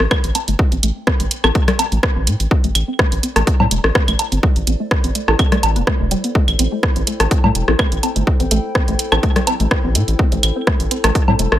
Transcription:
Already playing: E4 A4 C5 G5
0.00 A1
0.11 A3, kick, cross-stick, claves
0.24 A1, closed hi-hat
0.35 C4, closed hi-hat, low woodblock
0.48 G1 A3, closed hi-hat
0.59 kick
0.72 A1 C4, closed hi-hat
0.83 A1 A3, closed hi-hat
1.07 C4, kick, cross-stick
1.20 A1 A3, closed hi-hat
1.31 closed hi-hat
1.44 A1 C4 E4 G4 A4, cross-stick, claves, low woodblock
1.55 A3, kick, closed hi-hat
1.68 cross-stick, closed hi-hat, low conga
1.79 C4, closed hi-hat, low woodblock
1.92 A1 A3, closed hi-hat
2.03 kick, cross-stick
2.16 A1 C4
2.27 A2 A3, closed hi-hat
2.40 A1, closed hi-hat
2.51 C4, kick
2.64 A1 A3, closed hi-hat
2.75 A1, closed hi-hat, claves
2.88 C4
2.99 A3 D5, kick, cross-stick
3.12 A1, closed hi-hat
3.23 C4, closed hi-hat
3.36 A1 A3, cross-stick, closed hi-hat, low woodblock
3.47 kick, closed hi-hat
3.60 A2 C4, low conga, low woodblock
3.71 E1 A3, closed hi-hat
3.84 A1 C4 E4 G4 A4, cross-stick
3.95 C4, kick, cross-stick
4.08 A1 A3, closed hi-hat, claves
4.19 closed hi-hat, low woodblock
4.32 G1 C4, closed hi-hat
4.43 A3, kick
4.56 A1, closed hi-hat
4.67 A1 C4, closed hi-hat
4.80 A3
4.91 kick, cross-stick
5.04 A1 C4, closed hi-hat
5.15 A3, closed hi-hat
5.28 A1 C4 E4 G4 A4, cross-stick, low woodblock
5.39 C4, kick, closed hi-hat, claves
5.52 A3, cross-stick, closed hi-hat, low conga
5.63 A1, closed hi-hat, low woodblock
5.76 E1 B3, closed hi-hat
5.87 A3, kick, cross-stick
6.00 E1 A3
6.11 G3, closed hi-hat
6.24 B3, closed hi-hat
6.35 A3, kick
6.48 A1, closed hi-hat, claves
6.59 A1 C4, closed hi-hat
6.72 A3
6.83 G5, kick, cross-stick
6.96 A1 C4, closed hi-hat
7.07 A3, closed hi-hat
7.20 A1, cross-stick, closed hi-hat, low woodblock
7.31 C4, kick, closed hi-hat
7.44 A2 A3, low conga, low woodblock
7.55 E1, closed hi-hat
7.68 A1 C4 E4 G4 A4, cross-stick
7.79 A3, kick, cross-stick, claves
7.92 A1, closed hi-hat
8.03 C4, closed hi-hat, low woodblock
8.16 G1 A3, closed hi-hat
8.27 kick
8.40 A1 C4, closed hi-hat
8.51 A1 A3, closed hi-hat
8.75 C4, kick, cross-stick
8.88 A1 A3, closed hi-hat
8.99 closed hi-hat
9.12 A1 C4 E4 G4 A4, cross-stick, claves, low woodblock
9.23 A3, kick, closed hi-hat
9.36 cross-stick, closed hi-hat, low conga
9.47 C4, closed hi-hat, low woodblock
9.60 A1 A3, closed hi-hat
9.71 kick, cross-stick
9.84 A1 C4
9.95 A2 A3, closed hi-hat
10.08 A1, closed hi-hat
10.19 C4, kick
10.32 A1 A3, closed hi-hat
10.43 A1, closed hi-hat, claves
10.56 C4
10.67 A3 A5, kick, cross-stick
10.80 A1, closed hi-hat
10.91 C4, closed hi-hat
11.04 A1 A3, cross-stick, closed hi-hat, low woodblock
11.15 kick, closed hi-hat
11.28 A2 C4, low conga, low woodblock
11.39 E1 A3, closed hi-hat
11.52 A1 C4 E4 G4 A4, cross-stick

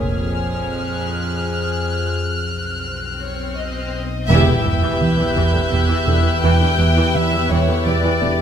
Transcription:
Already playing: F4
0.00 F1 F2 G#4 C5 D#6 F6
0.74 F#6
2.15 B1, swell
3.22 C#5
3.57 D#5
4.28 E1 E2 E3 B3 E4 G4 B4 E5 E6 G6, sub drop
4.47 E2 D3
4.65 E1 E2 E3
4.82 E2 E3
5.01 E3 F#6
5.18 E2 E3
5.36 E1 E2 E3
5.53 E2 D3
5.71 E1 E2 E3 D7
5.89 E2 E3
6.07 E1 E2 D3
6.24 E2 E3
6.43 E1 E2 E3 G5
6.60 E2 D3
6.78 E1 E2 E3
6.96 E2 E3
7.15 E3 E5
7.32 E2 E3
7.50 E1 E2 E3 C#5
7.68 E2 D3
7.86 E1 E2 E3 D5
8.03 E2 E3
8.21 E1 E2 D3

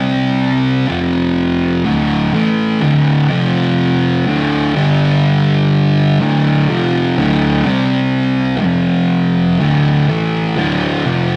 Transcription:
Already playing: C3 G3 C4
0.88 F2 C3 F3
1.85 D2 A2 D3
2.33 A2 E3 A3
2.81 D2 A2 D3
3.29 F2 C3 F3
4.26 D2 A2 D3
4.75 G2 D3 G3
6.20 D2 A2 D3
6.69 F2 C3 F3
7.17 D2 A2 D3
7.65 C3 G3 C4
8.63 F2 C3 F3
9.60 D2 A2 D3
10.08 A2 E3 A3
10.57 D2 A2 D3
11.06 F2 C3 F3

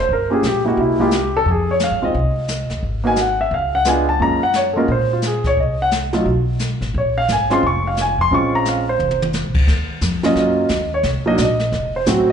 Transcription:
0.00 C5
0.09 G1, brush sweep, kick
0.13 A#4
0.30 A#3 C#4 F4 G4 G#4
0.43 A#1, snare, hi-hat pedal
0.47 G4
0.64 G#3 A#3 E4 F#4 G4
0.77 C2 E4, brush sweep, kick
1.00 G#3 A#3 E4 F4 G4
1.11 snare, hi-hat pedal
1.16 G4
1.37 A4
1.46 F2, brush sweep, kick
1.51 G#4
1.71 C#5
1.80 snare, hi-hat pedal
1.84 F5
1.91 G#2
2.02 D#2 G#3 C4 D#4 F4 D#5
2.14 C2, brush sweep, kick
2.48 snare, hi-hat pedal
2.70 D#2, snare
2.83 G#1, brush sweep, kick
3.04 A#3 B3 D#4 F#4 G#5
3.16 snare, hi-hat pedal
3.21 F#5
3.41 E5
3.51 C#2 F5, brush sweep, kick
3.75 F#5
3.85 G#3 B3 D4 F4 G#5, snare, hi-hat pedal
4.09 A5
4.20 F#2 G#3 A#3 C#4 F4 A#5, brush sweep, kick
4.43 F#5
4.53 C#5, snare, hi-hat pedal
4.73 G#3 A#3 C#4 F4 A4
4.77 A#4
4.88 A#2 C5, brush sweep, kick
5.13 F4
5.22 snare, hi-hat pedal
5.26 G#4
5.44 C#5, kick, snare
5.57 C2 D#5, brush sweep, kick
5.82 F#5
5.91 snare, hi-hat pedal
6.13 F#3 A3 D#4 F4, snare
6.26 B1, brush sweep, kick
6.59 snare, hi-hat pedal
6.81 A1, snare
6.94 A#1 C#5, brush sweep, kick
7.18 F5
7.28 G#1, snare, hi-hat pedal
7.32 G#5
7.50 G#3 C4 C#4 F4 C6, snare
7.63 F1 C#6, brush sweep, kick
7.87 F5
7.97 snare, hi-hat pedal
8.01 G#5
8.18 F2 C6
8.31 A#1 G#3 C4 C#4 F4 C#6, brush sweep, kick
8.55 A#5
8.65 F5, snare, hi-hat pedal
8.89 C5
8.99 F1, mid tom
9.11 mid tom
9.22 mid tom
9.33 snare, hi-hat pedal
9.45 A#1
9.55 C#2, kick, crash
9.67 D#2, brush sweep, kick, snare
10.01 F2, kick, snare, hi-hat pedal
10.23 F#3 A#3 C#4 F4 D#5, snare
10.35 F#2 D#5, brush sweep, kick, snare
10.69 D#2, kick, snare, hi-hat pedal
10.94 C#5
11.03 C2, brush sweep, kick, snare
11.26 F#3 A#3 D4 D#4 D#5
11.38 A#1 D#5, kick, snare, hi-hat pedal
11.60 snare
11.72 F1, brush sweep, kick, snare
11.96 C5
12.06 A1 F#3 A3 C4 F#4, kick, snare, hi-hat pedal

